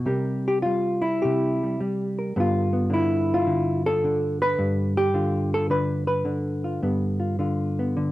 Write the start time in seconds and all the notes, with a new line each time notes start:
0.06 C3 G3 G4 A#4
0.48 G4
0.62 G3 F4
1.02 E4
1.22 C3 G4
1.63 G3
1.80 G3
2.19 A#4
2.36 G2 D3 B3 F4
2.73 B3
2.90 D3 E4
3.34 F4
3.47 D3
3.86 A4
4.04 D3
4.42 B4
4.59 G2
4.97 G4
5.14 D3 F4
5.54 A4
5.70 D3 B4
6.07 B4
6.25 D3
6.64 F4
6.83 G2 B3
7.20 F4
7.39 D3 F4
7.79 B3
7.97 D3